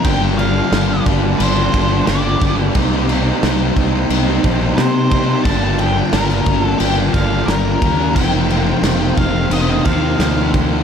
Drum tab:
CC |x-x-x-x-x-x-x-x-|x-x-x-x-x-x-x-x-|x-x-x-x-x-x-x-x-|x-x-x-x-x-x-x-x-|
SD |----o-------o---|----o-------o---|----oo----o-o---|----o-----o-o---|
BD |o-----o---o---o-|o-----o---o---o-|o-----o---o---o-|o-----o---o---o-|